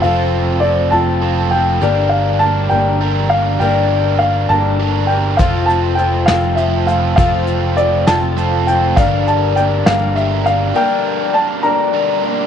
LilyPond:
<<
  \new Staff \with { instrumentName = "Grand piano" } { \time 6/8 \key g \dorian \tempo 4. = 67 f''4 d''8 a''4 g''8~ | g''8 f''8 a''8 g''4 f''8 | g''4 f''8 a''4 g''8 | f''8 a''8 g''8 f''8 e''8 f''8 |
f''4 d''8 a''4 g''8 | f''8 a''8 g''8 f''8 e''8 f''8 | g''4 a''8 bes''4 r8 | }
  \new Staff \with { instrumentName = "Overdriven electric guitar" } { \time 6/8 \key g \dorian <f a c' f' a'>2 <f a c' f' a'>4 | <g d' g' bes'>2 <g d' g' bes'>4 | <g d' g' bes'>2 <g d' g' bes'>4 | <f a c' f' a'>2 <f a c' f' a'>4 |
<f a c' f' a'>2 <f a c' f' a'>4 | <g d' g' bes'>2 <g d' g' bes'>4 | <g d' g' bes'>2 <g d' g' bes'>4 | }
  \new Staff \with { instrumentName = "Steel-string acoustic guitar" } { \time 6/8 \key g \dorian <f c' f' a'>4 <f c' f' a'>8 <f c' f' a'>4 <c' f' a'>8 | <g, d g bes d' bes'>4 <g bes d' bes'>8 <g, d g bes d' bes'>4 <g bes d' bes'>8 | <g, d g bes d' bes'>4 <g bes d' bes'>8 <g, d g bes d' bes'>4 <g bes d' bes'>8 | <f c' f' a'>4 <f c' f' a'>8 <f c' f' a'>4 <c' f' a'>8 |
<f c' f' a'>4 <f c' f' a'>8 <f c' f' a'>4 <c' f' a'>8 | <g, d g bes d' bes'>4 <g bes d' bes'>8 <g, d g bes d' bes'>4 <g bes d' bes'>8 | <g, d g bes d' bes'>4 <g bes d' bes'>8 <g, d g bes d' bes'>4 <g bes d' bes'>8 | }
  \new Staff \with { instrumentName = "Picked electric bass" } { \clef bass \time 6/8 \key g \dorian f,,4. f,,4. | g,,4. g,,4. | g,,4. g,,4. | f,,4. f,,4. |
f,,4. f,,4. | g,,4. g,,4. | r2. | }
  \new DrumStaff \with { instrumentName = "Drums" } \drummode { \time 6/8 r4. r4. | r4. r4. | r4. r4. | <hh bd>8 hh8 hh8 <hh sn>8 hh8 hh8 |
<hh bd>8 hh8 hh8 <hh sn>8 hh8 hh8 | <hh bd>8 hh8 hh8 <hh sn>8 hh8 hh8 | r4. r4. | }
>>